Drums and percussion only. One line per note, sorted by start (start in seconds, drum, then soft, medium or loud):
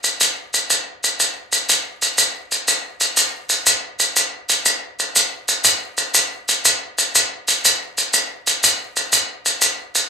0.04 maracas medium
0.21 maracas medium
0.54 maracas medium
0.70 maracas medium
1.04 maracas medium
1.20 maracas medium
1.52 maracas medium
1.69 maracas medium
2.02 maracas soft
2.18 maracas medium
2.52 maracas soft
2.68 maracas medium
3.01 maracas medium
3.17 maracas medium
3.49 maracas medium
3.66 maracas medium
3.99 maracas medium
4.16 maracas medium
4.49 maracas medium
4.65 maracas medium
4.99 maracas medium
5.16 maracas medium
5.48 maracas medium
5.64 maracas medium
5.98 maracas medium
6.14 maracas medium
6.49 maracas medium
6.65 maracas medium
6.98 maracas medium
7.15 maracas medium
7.48 maracas medium
7.65 maracas medium
7.98 maracas medium
8.13 maracas medium
8.47 maracas medium
8.63 maracas medium
8.96 maracas medium
9.12 maracas medium
9.46 maracas medium
9.61 maracas medium
9.95 maracas medium